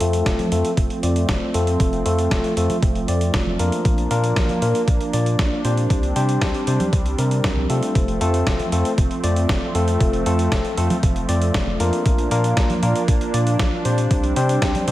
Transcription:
Already playing: analog synth pad F3 A3 C4
0.00 analog synth bass F2, tine electric piano A3 C4 F4 A4, closed hi-hat
0.13 closed hi-hat
0.26 analog synth bass F1, kick, snare, closed hi-hat
0.39 closed hi-hat, high conga
0.52 analog synth bass F2, tine electric piano A3 C4 F4 A4, closed hi-hat
0.65 closed hi-hat
0.77 analog synth bass F1, kick, closed hi-hat
0.90 closed hi-hat
1.03 analog synth bass F2, tine electric piano A3 C4 F4 D5, closed hi-hat
1.16 closed hi-hat
1.29 analog synth bass F1, kick, snare, closed hi-hat
1.54 analog synth bass F2, tine electric piano A3 C4 F4 A4, closed hi-hat
1.67 closed hi-hat
1.80 analog synth bass F1, kick, closed hi-hat
1.93 closed hi-hat
2.06 analog synth bass F2, tine electric piano A3 C4 F4 A4, closed hi-hat
2.19 closed hi-hat
2.31 analog synth bass F1, kick, snare, closed hi-hat
2.44 closed hi-hat
2.57 analog synth bass F2, tine electric piano A3 C4 F4 A4, closed hi-hat
2.70 closed hi-hat, high conga
2.83 analog synth bass F1, kick, closed hi-hat
2.95 closed hi-hat
3.08 analog synth bass F2, tine electric piano A3 C4 F4 D5, closed hi-hat
3.21 closed hi-hat
3.34 analog synth bass F1, kick, snare, closed hi-hat
3.47 high conga
3.59 analog synth bass F2, tine electric piano A#3 D4 F4 A#4, closed hi-hat
3.72 closed hi-hat
3.85 analog synth bass A#1, analog synth pad A#3 D4, kick, closed hi-hat
3.98 closed hi-hat
4.11 analog synth bass A#2, tine electric piano A#3 D4 F4 A#4, closed hi-hat
4.24 closed hi-hat
4.36 analog synth bass A#1, kick, snare, closed hi-hat
4.49 closed hi-hat, high conga
4.62 analog synth bass A#2, tine electric piano A#3 D4 F4 A#4, closed hi-hat
4.75 closed hi-hat
4.88 analog synth bass A#1, kick, closed hi-hat
5.01 closed hi-hat
5.13 analog synth bass A#2, tine electric piano A#3 D4 F4 D5, closed hi-hat
5.26 closed hi-hat
5.39 analog synth bass A#1, kick, snare, closed hi-hat
5.65 analog synth bass A#2, tine electric piano C4 D4 G4 C5, closed hi-hat
5.77 closed hi-hat
5.90 analog synth bass C2, analog synth pad G3 C4, kick, closed hi-hat
6.03 closed hi-hat
6.16 analog synth bass C3, tine electric piano C4 D4 G4 C5, closed hi-hat
6.29 closed hi-hat
6.42 analog synth bass C2, kick, snare, closed hi-hat
6.54 closed hi-hat
6.67 analog synth bass C3, tine electric piano C4 D4 G4 C5, closed hi-hat
6.80 closed hi-hat, high conga
6.93 analog synth bass C2, kick, closed hi-hat
7.06 closed hi-hat
7.18 analog synth bass C3, tine electric piano C4 D4 G4 A#4, closed hi-hat
7.31 closed hi-hat
7.44 analog synth bass C2, kick, snare, closed hi-hat
7.57 high conga
7.70 analog synth bass C3, tine electric piano A3 C4 F4 A4, closed hi-hat
7.83 closed hi-hat
7.95 analog synth bass F1, analog synth pad F3 A3, kick, closed hi-hat
8.08 closed hi-hat
8.21 analog synth bass F2, tine electric piano A3 C4 F4 A4, closed hi-hat
8.34 closed hi-hat
8.47 analog synth bass F1, kick, snare, closed hi-hat
8.59 closed hi-hat, high conga
8.72 analog synth bass F2, tine electric piano A3 C4 F4 A4, closed hi-hat
8.85 closed hi-hat
8.98 analog synth bass F1, kick, closed hi-hat
9.11 closed hi-hat
9.24 analog synth bass F2, tine electric piano A3 C4 F4 D5, closed hi-hat
9.36 closed hi-hat
9.49 analog synth bass F1, kick, snare, closed hi-hat
9.75 analog synth bass F2, tine electric piano A3 C4 F4 A4, closed hi-hat
9.88 closed hi-hat
10.01 analog synth bass F1, kick, closed hi-hat
10.13 closed hi-hat
10.26 analog synth bass F2, tine electric piano A3 C4 F4 A4, closed hi-hat
10.39 closed hi-hat
10.52 analog synth bass F1, kick, snare, closed hi-hat
10.65 closed hi-hat
10.77 analog synth bass F2, tine electric piano A3 C4 F4 A4, closed hi-hat
10.90 closed hi-hat, high conga
11.03 analog synth bass F1, kick, closed hi-hat
11.16 closed hi-hat
11.29 analog synth bass F2, tine electric piano A3 C4 F4 D5, closed hi-hat
11.42 closed hi-hat
11.54 analog synth bass F1, kick, snare, closed hi-hat
11.67 high conga
11.80 analog synth bass F2, tine electric piano A#3 D4 F4 A#4, closed hi-hat
11.93 closed hi-hat
12.06 analog synth bass A#1, analog synth pad A#3 D4, kick, closed hi-hat
12.18 closed hi-hat
12.31 analog synth bass A#2, tine electric piano A#3 D4 F4 A#4, closed hi-hat
12.44 closed hi-hat
12.57 analog synth bass A#1, kick, snare, closed hi-hat
12.70 closed hi-hat, high conga
12.83 analog synth bass A#2, tine electric piano A#3 D4 F4 A#4, closed hi-hat
12.95 closed hi-hat
13.08 analog synth bass A#1, kick, closed hi-hat
13.21 closed hi-hat
13.34 analog synth bass A#2, tine electric piano A#3 D4 F4 D5, closed hi-hat
13.47 closed hi-hat
13.59 analog synth bass A#1, kick, snare, closed hi-hat
13.85 analog synth bass A#2, tine electric piano C4 D4 G4 C5, closed hi-hat
13.98 closed hi-hat
14.11 analog synth bass C2, analog synth pad G3 C4, kick, closed hi-hat
14.24 closed hi-hat
14.36 analog synth bass C3, tine electric piano C4 D4 G4 C5, closed hi-hat
14.49 closed hi-hat
14.62 analog synth bass C2, kick, snare, closed hi-hat
14.75 closed hi-hat, high conga
14.88 analog synth bass C3, tine electric piano C4 D4 G4 C5, closed hi-hat

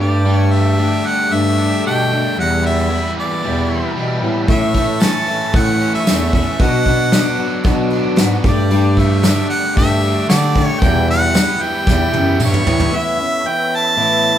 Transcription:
Already playing: bass clarinet G2, tonewheel organ A4 D5 G5 D6
0.00 overdriven electric guitar G3, steel-string acoustic guitar A3 D4 G4, harmonica D5
0.24 steel-string acoustic guitar G3 A3 D4 G4
0.36 harmonica C#5
0.51 overdriven electric guitar A3, harmonica E5
0.77 steel-string acoustic guitar G3 A3 D4 G4
1.05 overdriven electric guitar G3, harmonica F#5
1.30 bass clarinet G2, steel-string acoustic guitar G3 A3 D4 G4, harmonica E5
1.58 overdriven electric guitar D4
1.84 bass clarinet B2, steel-string acoustic guitar G3 A3 D4 G4, harmonica G5
2.11 overdriven electric guitar G3, steel-string acoustic guitar A3 D4 G4
2.35 steel-string acoustic guitar E2 B2 E3 G3 B3 E4, bass clarinet E2, tonewheel organ G4 B4 E5 B5
2.40 harmonica F#5
2.63 overdriven electric guitar G3, harmonica E5
2.90 steel-string acoustic guitar E3 G3 B3 E4
3.17 overdriven electric guitar E3, harmonica D5
3.43 steel-string acoustic guitar E2 B2 E3 G3 B3 E4, bass clarinet E2
3.70 overdriven electric guitar E4
3.95 bass clarinet B2, steel-string acoustic guitar E3 G3 B3
3.99 steel-string acoustic guitar E4
4.22 bass clarinet A2, steel-string acoustic guitar E3 G3 B3 E4
4.47 bass clarinet A2, steel-string acoustic guitar A2 E3 A3 C#4 E4, tonewheel organ A4 C#5 C#6, harmonica E5, kick, open hi-hat
4.74 overdriven electric guitar A3, kick, open hi-hat
5.00 steel-string acoustic guitar E3 A3 C#4 E4, harmonica A5, snare, open hi-hat, tambourine
5.27 overdriven electric guitar E3, steel-string acoustic guitar A3 C#4 E4, open hi-hat
5.53 bass clarinet A2, steel-string acoustic guitar A2 E3 A3 C#4 E4, harmonica F#5, kick, open hi-hat
5.80 overdriven electric guitar C#4, open hi-hat
5.94 harmonica E5, snare
6.06 bass clarinet E2, steel-string acoustic guitar E3 A3 C#4 E4, snare, open hi-hat, tambourine
6.32 overdriven electric guitar E3, steel-string acoustic guitar A3 C#4 E4, harmonica E5, kick, open hi-hat
6.59 steel-string acoustic guitar B2 F#3 B3 D4 F#4, bass clarinet B2, tonewheel organ B4 D5 F#5 D6, harmonica F#5, kick, open hi-hat
6.86 overdriven electric guitar B3, kick, open hi-hat
7.11 steel-string acoustic guitar F#3 B3 D4 F#4, snare, open hi-hat, tambourine
7.38 overdriven electric guitar F#3, steel-string acoustic guitar B3 D4 F#4, open hi-hat
7.64 steel-string acoustic guitar B2 F#3 B3 D4 F#4, bass clarinet B2, kick, open hi-hat
7.90 overdriven electric guitar D4, open hi-hat
8.16 bass clarinet G#2, steel-string acoustic guitar F#3 B3, snare, open hi-hat, tambourine
8.21 steel-string acoustic guitar D4 F#4
8.44 bass clarinet G2, overdriven electric guitar G3, steel-string acoustic guitar A3 D4 G4, tonewheel organ A4 G5, kick, open hi-hat
8.48 harmonica D5
8.70 steel-string acoustic guitar G3 A3 D4 G4, open hi-hat
8.96 overdriven electric guitar A3, harmonica E5, kick, open hi-hat
9.23 steel-string acoustic guitar G3 A3 D4 G4, snare, open hi-hat, tambourine
9.50 overdriven electric guitar G3, harmonica F#5, open hi-hat
9.76 bass clarinet G2, steel-string acoustic guitar G3 A3 D4 G4, harmonica E5, kick, open hi-hat
10.03 overdriven electric guitar D4, open hi-hat
10.28 bass clarinet D3, steel-string acoustic guitar G3 A3 D4 G4, harmonica D5, snare, open hi-hat, tambourine
10.54 overdriven electric guitar G3, steel-string acoustic guitar A3 D4 G4, kick, open hi-hat
10.65 harmonica C#5
10.80 bass clarinet E2, steel-string acoustic guitar E2 B2 E3 G3 E4 G4, harmonica G5, kick, open hi-hat
10.85 tonewheel organ G4 B4 E5 B5
11.08 overdriven electric guitar G3, harmonica F#5, open hi-hat
11.34 steel-string acoustic guitar E3 G3 E4 G4, overdriven electric guitar B3, snare, open hi-hat, tambourine
11.59 steel-string acoustic guitar E3 G3 E4 G4, harmonica G5, open hi-hat
11.86 steel-string acoustic guitar E2 B2 E3 G3 E4 G4, bass clarinet E2, kick, snare
12.13 bass clarinet F#2, overdriven electric guitar B3, high tom
12.40 bass clarinet G2, steel-string acoustic guitar E3 G3 E4 G4, mid tom, tambourine
12.45 harmonica C#5
12.54 mid tom
12.64 bass clarinet A2, steel-string acoustic guitar E3 G3 E4 G4, floor tom
12.80 floor tom
12.92 steel-string acoustic guitar A2 E3 B3 C#4 E4, tonewheel organ A4 C#5 E5 B5
12.96 harmonica E5
13.18 steel-string acoustic guitar B3 C#4 E4
13.44 steel-string acoustic guitar E3 B3 C#4 E4, harmonica G5
13.76 harmonica A5
13.97 steel-string acoustic guitar A2 E3 B3 C#4 E4

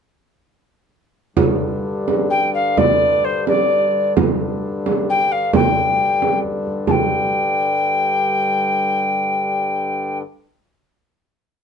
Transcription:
1.36 harmonium G2 D3, frame drum
2.08 frame drum
2.30 recorder G5
2.54 recorder F5
2.77 recorder D5, frame drum
3.24 recorder C5
3.47 recorder D5, frame drum
4.17 frame drum
4.86 frame drum
5.09 recorder G5
5.31 recorder F5
5.53 recorder G5, frame drum
6.00 frame drum
6.22 frame drum
6.44 frame drum
6.66 frame drum
6.87 harmonium G2 D3, recorder G5 A5, frame drum

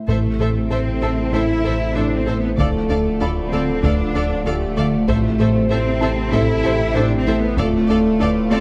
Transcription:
0.08 double bass section A1, sub bass A1, analog synth bass A2, trombone section C3 E4, cello section A3, analog synth pad A3 C4 E4 A4, synth arpeggio sound A3, viola section A4, violin section C5 E5, taiko
0.39 double bass section A1, analog synth bass A2, viola section A4, synth arpeggio sound A4, violin section C5 E5
0.70 double bass section A1, analog synth bass A2, cello section C4, synth arpeggio sound A4, viola section A4, violin section C5 E5
1.02 double bass section A1, analog synth bass A3, synth arpeggio sound E4, viola section A4, felt piano A4 A5, violin section C5 E5
1.32 double bass section A1, analog synth bass A2, synth arpeggio sound A3, cello section E4, viola section A4, french horn section C5, violin section C5 E5
1.63 double bass section A1, analog synth bass A2, synth arpeggio sound A4, viola section A4, french horn section C5, violin section C5 E5
1.95 double bass section A1, analog synth bass A2, cello section D4, viola section A4, violin section C5 E5
2.16 cello section C4
2.27 double bass section A1, analog synth bass A3, synth arpeggio sound E4, viola section A4, violin section C5 E5
2.37 cello section B3
2.57 sub bass D1, analog synth bass D2, double bass section D2, synth arpeggio sound D3, trombone section D3 F3, cello section A3, analog synth pad F4 D5, french horn section A4, viola section A4, violin section D5 F5, taiko
2.89 analog synth bass D2, double bass section D2, synth arpeggio sound D4, viola section A4, violin section D5 F5
3.20 double bass section D2, analog synth bass D2, synth arpeggio sound D4, french horn section F4, viola section A4, violin section D5 F5, felt piano B5
3.50 double bass section D2, analog synth bass D3, synth arpeggio sound A3, cello section C4, french horn section A4, viola section A4, violin section D5 F5
3.82 analog synth bass D2, double bass section D2, synth arpeggio sound D3, cello section D4, viola section A4, french horn section B4, violin section D5 F5, taiko
4.14 analog synth bass D2, double bass section D2, synth arpeggio sound D4, french horn section A4, viola section A4, violin section D5 F5
4.46 double bass section D2, analog synth bass D2, cello section A3, french horn section G4, viola section A4, violin section D5 F5
4.77 double bass section D2, analog synth bass D3, synth arpeggio sound A3, french horn section F4, viola section A4, violin section D5 F5
5.08 sub bass A1, double bass section A1, analog synth bass A2, trombone section C3, synth arpeggio sound A3, analog synth pad A3 C4 E4 A4, cello section A3, french horn section E4, viola section A4, violin section C5 E5, taiko
5.39 double bass section A1, analog synth bass A2, synth arpeggio sound A4, viola section A4, violin section C5 E5, french horn section C5
5.71 double bass section A1, analog synth bass A2, cello section C4, trombone section E4, synth arpeggio sound A4, viola section A4, violin section C5 E5, french horn section C5
6.01 double bass section A1, analog synth bass A3, synth arpeggio sound E4, viola section A4, violin section C5 E5, felt piano A5
6.32 double bass section A1, analog synth bass A2, synth arpeggio sound A3, cello section E4, french horn section A4, viola section A4, violin section C5 E5, taiko
6.63 double bass section A1, analog synth bass A2, french horn section G4, synth arpeggio sound A4, viola section A4, violin section C5 E5
6.95 double bass section A1, analog synth bass A2, cello section D4, viola section A4, violin section C5 E5
7.17 cello section C4
7.27 double bass section A1, analog synth bass A3, synth arpeggio sound E4, viola section A4, violin section C5 E5
7.38 cello section B3
7.58 sub bass D1, analog synth bass D2, double bass section D2, trombone section A2 F4, synth arpeggio sound D3, cello section A3, french horn section F4, analog synth pad F4 D5, viola section A4, violin section D5 F5, taiko
7.88 analog synth bass D2, double bass section D2, synth arpeggio sound D4, french horn section A4, viola section A4, violin section D5 F5
8.20 analog synth bass D2, double bass section D2, synth arpeggio sound D4, viola section A4, french horn section B4, violin section D5 F5
8.51 double bass section D2, analog synth bass D3, synth arpeggio sound A3, cello section C4, french horn section A4, viola section A4, violin section D5 F5

